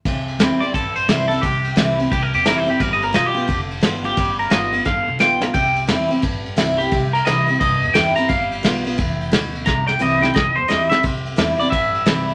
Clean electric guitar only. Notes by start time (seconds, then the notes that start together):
0.60 D5
0.75 A4
0.96 C5
1.28 A4
1.41 G4
2.12 G4
2.23 A#4
2.35 G4
2.48 A#4
2.58 C5
2.70 G4
2.81 A#4
2.93 D#5
3.04 A#4
3.15 D#5
3.26 G4
4.05 G4
4.39 A#4
4.51 D#5
4.86 F5
5.20 G5
5.43 A#5
5.54 G5
6.78 G4
7.13 A#4
7.25 D#5
7.60 D#5
7.94 G5
8.16 A#5
8.29 F5
9.66 A#5
9.87 G5
10.02 D#5
10.22 G5
10.35 D#5
10.56 C5
10.68 D#5
10.90 E5
11.60 D5
11.70 E5